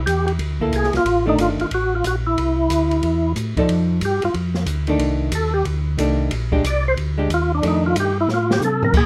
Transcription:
0.06 tonewheel organ E2 G4, kick, hi-hat pedal, ride
0.27 tonewheel organ G4, ride
0.39 tonewheel organ D2, kick, ride
0.60 hollow-body jazz guitar A#3 E4 A4, kick
0.72 tonewheel organ C2 G#4, hi-hat pedal, ride
0.84 snare
0.93 tonewheel organ C2 F4, snare, ride
1.05 tonewheel organ A1, kick, ride
1.26 hollow-body jazz guitar D#3 A3 D4, tonewheel organ D#4
1.38 tonewheel organ G1 F4, kick, hi-hat pedal, ride
1.59 tonewheel organ G1 F4, ride
1.71 tonewheel organ A1 F#4, kick, ride
1.95 tonewheel organ F4
2.04 tonewheel organ A#1 F#4, kick, hi-hat pedal, ride
2.27 tonewheel organ E4
2.37 tonewheel organ C2, kick, ride
2.70 tonewheel organ D2, kick, hi-hat pedal, ride
2.91 ride
3.03 tonewheel organ E2, kick, ride
3.36 tonewheel organ A2, kick, hi-hat pedal, ride
3.57 tonewheel organ A2, hollow-body jazz guitar F3 D#4 A4 D5, kick, ride
3.69 tonewheel organ F2, kick, ride
4.01 tonewheel organ G2 G4, kick, hi-hat pedal, ride
4.22 tonewheel organ G2 F4, ride
4.34 tonewheel organ F2, kick, ride
4.54 snare
4.66 tonewheel organ D2, kick, hi-hat pedal, ride
4.87 hollow-body jazz guitar D#3 A3 D4, ride
4.99 tonewheel organ C2, kick, ride
5.32 tonewheel organ D#2 A4, kick, hi-hat pedal, ride
5.54 tonewheel organ G4
5.65 tonewheel organ D2, kick, ride
5.98 tonewheel organ C2, hollow-body jazz guitar D#3 A3 D4, kick, hi-hat pedal, ride
6.31 tonewheel organ A#1, kick, ride
6.52 hollow-body jazz guitar G#3 D4 G4, kick
6.64 tonewheel organ C2 D5, kick, hi-hat pedal, ride
6.88 tonewheel organ C5
6.97 tonewheel organ D2, kick, ride
7.18 hollow-body jazz guitar G#3 D4 G4
7.30 tonewheel organ D#2, kick, hi-hat pedal, ride
7.34 tonewheel organ F4
7.55 tonewheel organ D4
7.62 tonewheel organ F2, hollow-body jazz guitar D#3 A3 D4, kick, ride
7.68 tonewheel organ D#4
7.86 tonewheel organ F4
7.95 tonewheel organ G2, kick, hi-hat pedal, ride
8.00 tonewheel organ G4
8.21 tonewheel organ E4
8.27 tonewheel organ A2, snare
8.34 tonewheel organ F4
8.51 tonewheel organ G4, snare
8.60 tonewheel organ C3, hi-hat pedal, high tom
8.65 tonewheel organ A4
8.83 tonewheel organ A#4, floor tom
8.93 tonewheel organ A#2 G#4, kick, crash

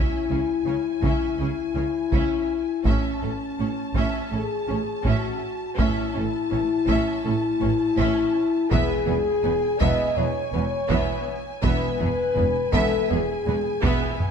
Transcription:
Already playing: viola section C#4, french horn section E4, violin section E5 G#5
0.29 double bass section C#2, cello section C#3, viola section C#4, violin section G#4
0.65 double bass section C#2, cello section C#3, viola section C#4, violin section C#5
1.02 double bass section C#2, cello section C#3, viola section C#4, violin section E5, taiko
1.38 double bass section C#2, cello section C#3, viola section C#4, french horn section E4, violin section G#4
1.75 double bass section C#2, cello section C#3, viola section C#4, violin section C#5
2.12 double bass section C#2, cello section C#3, viola section C#4, violin section E5, taiko
2.85 double bass section A1, cello section A2, viola section C#4, french horn section C#4, violin section E5 A5, taiko
3.22 double bass section A1, cello section A2, viola section C#4, violin section A4
3.60 double bass section A1, cello section A2, viola section C#4, violin section C#5
3.95 double bass section A1, cello section A2, viola section C#4, violin section E5, taiko
4.31 double bass section A1, cello section A2, viola section C#4, french horn section G#4, violin section A4
4.68 double bass section A1, cello section A2, viola section C#4, violin section C#5
5.04 double bass section A1, cello section A2, viola section C#4, french horn section F#4, taiko
5.08 violin section E5
5.77 double bass section A1, cello section A2, viola section C#4, french horn section E4, violin section E5 A5, taiko
6.14 double bass section A1, cello section A2, viola section C#4, violin section A4
6.51 double bass section A1, cello section A2, viola section C#4, violin section C#5
6.88 double bass section A1, cello section A2, viola section C#4, violin section E5, taiko
7.24 double bass section A1, cello section A2, viola section C#4, french horn section E4, violin section A4
7.60 double bass section A1, cello section A2, viola section C#4, violin section C#5
7.97 double bass section A1, cello section A2, viola section C#4, violin section E5, taiko
8.71 double bass section E1, cello section E2, viola section B3, french horn section G#4, violin section E5 G#5, taiko
9.06 double bass section E1, cello section E2, viola section B3, violin section G#4
9.43 double bass section E1, cello section E2, viola section B3, violin section B4
9.79 double bass section E1, cello section E2, viola section B3, french horn section D#5, violin section E5, taiko
10.16 double bass section E1, cello section E2, viola section B3, violin section G#4, french horn section C#5
10.53 double bass section E1, cello section E2, viola section B3, violin section B4
10.89 double bass section E1, cello section E2, viola section B3, violin section E5, taiko
11.62 double bass section E1, cello section E2, viola section B3, french horn section B4, violin section E5 G#5, taiko
11.99 double bass section E1, cello section E2, viola section B3, violin section G#4, taiko low-mid
12.35 double bass section E1, cello section E2, viola section B3, violin section B4, taiko low-mid
12.73 double bass section E1, cello section E2, viola section B3, french horn section A4, violin section E5, taiko
13.10 double bass section E1, cello section E2, viola section B3, french horn section G#4, violin section G#4
13.46 double bass section E1, cello section E2, viola section B3, violin section B4
13.83 double bass section E1, cello section E2, viola section B3, violin section E5, taiko
14.20 taiko low-mid

